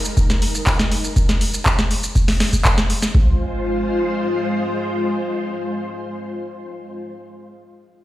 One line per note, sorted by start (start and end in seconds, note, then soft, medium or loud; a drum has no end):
0.00 1.12 G#3 medium
0.00 1.12 D#4 medium
0.00 1.15 A#4 medium
0.05 shaker medium
0.17 kick loud
0.17 shaker medium
0.30 snare medium
0.30 shaker soft
0.42 open hi-hat loud
0.55 shaker medium
0.67 kick loud
0.67 clap loud
0.67 open hi-hat medium
0.67 shaker medium
0.79 snare medium
0.79 shaker soft
0.92 open hi-hat loud
1.04 shaker medium
1.16 kick loud
1.16 shaker medium
1.29 snare medium
1.29 shaker soft
1.41 open hi-hat loud
1.54 shaker medium
1.66 kick loud
1.66 clap loud
1.66 shaker medium
1.79 snare medium
1.79 shaker soft
1.91 open hi-hat loud
2.03 shaker medium
2.15 kick loud
2.15 shaker medium
2.28 snare medium
2.28 open hi-hat medium
2.28 shaker soft
2.40 snare medium
2.40 open hi-hat loud
2.53 kick medium
2.53 shaker medium
2.65 kick loud
2.65 clap loud
2.65 shaker medium
2.78 snare medium
2.78 shaker soft
2.90 open hi-hat loud
3.02 snare medium
3.02 shaker medium
3.15 7.02 G#3 medium
3.15 7.02 F4 medium
3.15 7.02 C5 medium
3.15 kick loud
3.15 floor tom loud